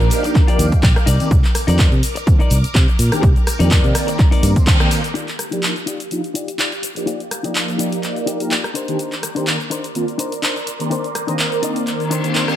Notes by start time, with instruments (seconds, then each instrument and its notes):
Already playing: analog polysynth F3 A#3 D4 D#4 A#4, string machine G4 F5 D6
0.00 fingered electric bass A#1, closed hi-hat, shaker
0.10 open hi-hat, tambourine, shaker
0.23 muted clean electric guitar stroke, closed hi-hat, tambourine, shaker
0.34 muted clean electric guitar stroke, kick, clap, closed hi-hat, tambourine, shaker
0.47 clean electric guitar F4 G4 D5, muted fingered electric bass stroke, open hi-hat, shaker
0.59 fingered electric bass D#2, open hi-hat, tambourine, shaker
0.72 analog polysynth G4, muted fingered electric bass stroke, kick, closed hi-hat, tambourine, shaker
0.82 fingered electric bass A#1, muted clean electric guitar stroke, kick, clap, closed hi-hat, tambourine, shaker
0.95 muted clean electric guitar stroke, cross-stick, closed hi-hat, shaker
1.06 fingered electric bass C2, clean electric guitar D#4 A#4 D5, string machine A#4, open hi-hat, tambourine, shaker
1.20 analog polysynth D#3 A#3 C4 D4 G4, closed hi-hat, tambourine, shaker
1.31 fingered electric bass C2, kick, closed hi-hat, shaker
1.43 muted clean electric guitar stroke, clap, closed hi-hat, shaker
1.54 cross-stick, open hi-hat, tambourine, shaker
1.67 fingered electric bass F2, analog polysynth D#3 A#3 C4 D4 G4, clean electric guitar D#4 A#4 D5, open hi-hat, tambourine, shaker
1.78 analog polysynth D#3 A#3 C4 D4 A#4, kick, clap, closed hi-hat, tambourine, shaker
1.92 fingered electric bass C3, closed hi-hat, shaker
2.03 open hi-hat, tambourine, shaker
2.15 muted clean electric guitar stroke, closed hi-hat, tambourine, shaker
2.26 analog polysynth D#3 A#3 C4 D4 F4, muted clean electric guitar stroke, kick, closed hi-hat, tambourine, shaker
2.39 clean electric guitar D#4 A#4 D5, muted fingered electric bass stroke, closed hi-hat, shaker
2.50 fingered electric bass C2, open hi-hat, tambourine, shaker
2.64 muted fingered electric bass stroke, closed hi-hat, tambourine, shaker
2.74 fingered electric bass C3, muted clean electric guitar stroke, kick, clap, closed hi-hat, tambourine, shaker
2.87 muted clean electric guitar stroke, closed hi-hat, shaker
2.99 fingered electric bass A#2, open hi-hat, tambourine, shaker
3.12 analog polysynth D#3 A#3 C4 D4 G4, cross-stick, closed hi-hat, tambourine, shaker
3.22 fingered electric bass C2, muted clean electric guitar stroke, kick, closed hi-hat, tambourine, shaker
3.35 muted clean electric guitar stroke, closed hi-hat, shaker
3.47 cross-stick, open hi-hat, tambourine, shaker
3.59 fingered electric bass F2, analog polysynth D#3 A#3 C4 D4 G4, clean electric guitar D#4 A#4 D5, closed hi-hat, tambourine, shaker
3.70 analog polysynth D#3 A#3 C4 A#4 D5, kick, clap, closed hi-hat, shaker
3.84 fingered electric bass C3, closed hi-hat, shaker
3.95 cross-stick, open hi-hat, tambourine, shaker
4.07 muted clean electric guitar stroke, closed hi-hat, tambourine, shaker
4.18 muted clean electric guitar stroke, kick, clap, closed hi-hat, shaker
4.31 clean electric guitar D#4 A#4 D5, muted fingered electric bass stroke, open hi-hat, shaker
4.43 fingered electric bass G2, open hi-hat, tambourine, shaker
4.56 analog polysynth D#3 A#3 C4 D4 C5, kick, closed hi-hat, tambourine, shaker
4.66 muted clean electric guitar stroke, kick, clap, closed hi-hat, tambourine, shaker
4.79 analog polysynth D#3 A#3 C4 D4 G4, muted clean electric guitar stroke, cross-stick, closed hi-hat, shaker
4.91 analog polysynth D#3 A#3 C4 D4 F4, open hi-hat, tambourine, shaker
5.04 closed hi-hat, tambourine, shaker
5.14 clean electric guitar D#4 F4 G4 D5, string machine G4 F5 D6, closed hi-hat, shaker
5.28 clap, closed hi-hat, shaker
5.38 muted clean electric guitar stroke, cross-stick, closed hi-hat, shaker
5.51 analog polysynth F3 A#3 D4 D#4 G4, clean electric guitar D#4 F4 G4 D5, closed hi-hat, shaker
5.63 analog polysynth F3 A#3 D4 D#4, clap, closed hi-hat, shaker
5.75 muted clean electric guitar stroke, closed hi-hat, shaker
5.86 clean electric guitar D#4 F4 G4 D5, closed hi-hat, shaker
6.00 closed hi-hat, shaker
6.10 analog polysynth F3 A#3 D4 D#4 F4, muted clean electric guitar stroke, closed hi-hat, shaker
6.24 closed hi-hat, shaker
6.34 clean electric guitar D#4 F4 G4 D5, closed hi-hat, shaker
6.48 closed hi-hat, shaker
6.58 clean electric guitar D#4 F4 G4 D5, clap, closed hi-hat, shaker
6.72 closed hi-hat, shaker
6.82 muted clean electric guitar stroke, closed hi-hat, shaker
6.95 analog polysynth F3 A#3 D4 D#4 G4, muted clean electric guitar stroke, closed hi-hat, shaker
7.06 clean electric guitar D#4 F4 G4 D5, closed hi-hat, shaker
7.20 closed hi-hat, shaker
7.30 muted clean electric guitar stroke, cross-stick, closed hi-hat, shaker
7.43 analog polysynth F3 A#3 D4 D#4 G4, clean electric guitar D#4 F4 G4 D5, trumpet section D#5, closed hi-hat, shaker
7.54 analog polysynth F3 A#3 D#4 A#4 D5, clap, closed hi-hat, shaker
7.67 muted clean electric guitar stroke, closed hi-hat, shaker
7.78 clean electric guitar D#4 F4 G4 D5, closed hi-hat, shaker
7.92 closed hi-hat, shaker
8.02 muted clean electric guitar stroke, clap, closed hi-hat, shaker
8.16 closed hi-hat, shaker
8.26 clean electric guitar D#4 F4 G4 D5, closed hi-hat, shaker
8.40 analog polysynth F3 A#3 D4 D#4 G4, trumpet section A#4, closed hi-hat, shaker
8.50 clean electric guitar D#4 F4 G4 D5, trumpet section A#4, clap, closed hi-hat, shaker
8.64 cross-stick, closed hi-hat, shaker
8.74 clean electric guitar D4 D#4 A#4 C5, string machine A#4 D5 C6, closed hi-hat, shaker
8.88 analog polysynth D#3 A#3 C4 D4 G4, closed hi-hat, shaker
8.99 closed hi-hat, shaker
9.12 clap, closed hi-hat, shaker
9.22 muted clean electric guitar stroke, cross-stick, closed hi-hat, shaker
9.35 analog polysynth D#3 A#3 C4 D4 G4, clean electric guitar D4 D#4 A#4 C5, closed hi-hat, shaker
9.47 analog polysynth D#3 A#3 C4 D4, clap, closed hi-hat, shaker
9.59 muted clean electric guitar stroke, closed hi-hat, shaker
9.70 clean electric guitar D4 D#4 A#4 C5, closed hi-hat, shaker
9.84 closed hi-hat, shaker
9.94 analog polysynth D#3 A#3 C4 D4 F4, muted clean electric guitar stroke, closed hi-hat, shaker
10.08 closed hi-hat, shaker
10.18 clean electric guitar D4 D#4 A#4 C5, closed hi-hat, shaker
10.32 closed hi-hat, shaker
10.42 clean electric guitar D4 D#4 A#4 C5, clap, closed hi-hat, shaker
10.56 closed hi-hat, shaker
10.66 muted clean electric guitar stroke, closed hi-hat, shaker
10.79 analog polysynth D#3 A#3 C4 D4 G4, muted clean electric guitar stroke, closed hi-hat, shaker
10.90 clean electric guitar D4 D#4 A#4 C5, closed hi-hat, shaker
11.04 closed hi-hat, shaker
11.14 muted clean electric guitar stroke, cross-stick, closed hi-hat, shaker
11.27 analog polysynth D#3 A#3 C4 D4 G4, clean electric guitar D4 D#4 A#4 C5, trumpet section D#5, closed hi-hat, shaker
11.38 analog polysynth D#3 A#3 C4 A#4, clap, closed hi-hat, shaker
11.51 muted clean electric guitar stroke, closed hi-hat, shaker
11.62 clean electric guitar D4 D#4 A#4 D#5, closed hi-hat, shaker
11.76 closed hi-hat, shaker
11.87 muted clean electric guitar stroke, clap, closed hi-hat, reverse cymbal, shaker
12.00 closed hi-hat, shaker
12.10 clean electric guitar D4 D#4 A#4 C5, closed hi-hat, shaker
12.24 analog polysynth D#3 A#3 C4 D4 C5, closed hi-hat, shaker
12.34 clean electric guitar D4 D#4 A#4 C5, clap, closed hi-hat, shaker
12.48 analog polysynth D#3 A#3 C4 D4 G4, cross-stick, closed hi-hat, shaker